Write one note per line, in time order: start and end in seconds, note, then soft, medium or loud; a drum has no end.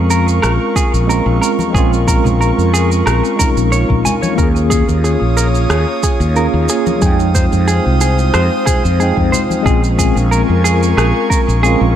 0.00 0.38 F2 medium
0.00 1.04 G#3 medium
0.00 1.05 C4 medium
0.00 1.06 C#4 medium
0.00 1.07 F4 medium
0.00 11.96 F4 medium
0.00 4.35 A#4 medium
0.00 4.35 C#6 medium
0.10 0.26 A#4 medium
0.10 shaker medium
0.28 shaker soft
0.42 0.57 A#1 medium
0.42 0.52 A#4 medium
0.42 cross-stick medium
0.42 shaker soft
0.76 0.92 G#4 medium
0.76 kick loud
0.76 shaker medium
0.94 1.19 A#1 medium
0.94 shaker soft
1.07 1.69 G#3 medium
1.07 1.71 C4 medium
1.07 1.71 C#4 medium
1.07 1.72 F4 medium
1.07 1.25 A#4 medium
1.07 shaker soft
1.26 1.38 A#1 loud
1.42 1.51 A#4 medium
1.42 shaker medium
1.59 high conga loud
1.59 shaker soft
1.70 3.34 G#3 medium
1.70 3.36 C4 medium
1.74 2.19 A#1 medium
1.74 3.37 C#4 medium
1.74 3.38 F4 loud
1.74 1.90 G#4 loud
1.74 kick loud
1.74 shaker soft
1.93 shaker soft
2.08 2.23 A#4 medium
2.08 kick loud
2.08 shaker medium
2.25 2.51 A#1 medium
2.25 low conga medium
2.25 shaker soft
2.41 2.50 A#4 medium
2.41 shaker soft
2.58 3.01 F2 medium
2.58 shaker soft
2.74 2.89 G#4 loud
2.74 shaker medium
2.92 shaker soft
3.06 3.20 A#1 medium
3.06 3.22 A#4 medium
3.06 cross-stick medium
3.06 shaker soft
3.25 shaker soft
3.36 4.33 G#3 medium
3.36 3.49 A#4 medium
3.36 kick loud
3.36 high conga medium
3.36 low conga medium
3.36 shaker medium
3.41 4.35 C#4 medium
3.41 4.37 D#4 medium
3.57 3.83 A#1 medium
3.57 shaker soft
3.72 3.88 C#5 medium
3.72 shaker soft
3.90 4.02 A#1 loud
3.90 kick medium
4.05 4.15 G#5 medium
4.05 low conga medium
4.05 shaker medium
4.22 4.37 C#5 medium
4.22 high conga medium
4.22 shaker soft
4.35 4.83 D#2 loud
4.35 6.31 A#3 medium
4.35 6.32 C#4 medium
4.35 4.48 A#4 medium
4.35 6.99 C#5 medium
4.35 6.99 D#6 medium
4.35 kick loud
4.35 shaker soft
4.40 6.33 F4 medium
4.40 6.35 G#4 medium
4.56 shaker soft
4.70 4.87 G#4 medium
4.70 kick loud
4.70 shaker medium
4.89 5.15 D#2 medium
4.89 shaker soft
5.04 5.21 G#4 medium
5.04 shaker soft
5.21 5.65 A#1 medium
5.37 5.47 A#4 medium
5.37 shaker medium
5.55 shaker soft
5.70 5.84 D#2 medium
5.70 5.86 G#4 loud
5.70 cross-stick medium
5.70 shaker soft
6.03 6.20 G#4 medium
6.03 kick loud
6.03 shaker medium
6.20 6.46 D#2 medium
6.20 shaker soft
6.34 6.97 A#3 medium
6.34 6.98 C#4 medium
6.34 6.99 F4 medium
6.34 6.99 G#4 medium
6.34 6.46 A#4 medium
6.34 shaker soft
6.54 6.66 D#2 loud
6.69 6.85 G#4 loud
6.69 shaker medium
6.87 high conga loud
6.87 shaker soft
6.98 7.47 F2 loud
6.98 8.94 G#3 medium
6.98 8.96 C4 medium
6.98 7.19 G#4 medium
6.98 shaker soft
7.02 8.97 D#4 medium
7.02 9.64 C5 medium
7.02 8.98 G5 loud
7.02 9.64 D#6 medium
7.02 kick loud
7.20 shaker soft
7.35 7.44 C5 medium
7.35 kick medium
7.35 shaker medium
7.53 7.78 F2 medium
7.53 shaker soft
7.68 7.84 G#4 loud
7.68 shaker soft
7.86 8.29 C2 medium
8.01 8.18 G#4 medium
8.01 shaker medium
8.19 shaker soft
8.34 8.48 F2 medium
8.34 8.44 C5 medium
8.34 cross-stick medium
8.34 shaker soft
8.66 8.82 G#4 loud
8.66 kick medium
8.66 low conga medium
8.66 shaker medium
8.85 9.11 F2 medium
8.85 shaker soft
8.99 9.62 G#3 medium
8.99 9.62 C4 medium
8.99 9.63 D#4 medium
8.99 9.17 G#4 medium
8.99 9.64 G5 medium
8.99 shaker soft
9.17 9.30 F2 loud
9.17 kick medium
9.32 9.42 C5 medium
9.32 low conga medium
9.32 shaker medium
9.50 high conga medium
9.50 shaker soft
9.63 10.10 A#1 loud
9.63 11.59 G#3 medium
9.63 11.60 C4 medium
9.63 9.82 G#4 loud
9.63 11.96 G#5 medium
9.63 11.96 C#6 medium
9.63 kick loud
9.63 shaker soft
9.67 11.61 C#4 medium
9.67 11.62 F4 loud
9.67 11.96 A#4 medium
9.84 shaker soft
9.99 10.15 G#4 medium
9.99 kick loud
9.99 shaker medium
10.16 10.42 A#1 medium
10.16 shaker soft
10.31 10.41 A#4 medium
10.31 shaker soft
10.49 10.93 F2 medium
10.64 10.80 G#4 loud
10.64 shaker medium
10.83 shaker soft
10.97 11.11 A#1 medium
10.97 11.14 G#4 medium
10.97 cross-stick medium
10.97 shaker soft
11.30 11.40 A#4 medium
11.30 kick medium
11.30 shaker medium
11.48 11.74 A#1 medium
11.48 shaker soft
11.62 11.96 G#3 medium
11.62 11.96 C4 medium
11.62 11.96 C#4 medium
11.62 11.96 F4 medium
11.62 11.79 G#4 loud
11.62 shaker soft
11.81 11.93 A#1 loud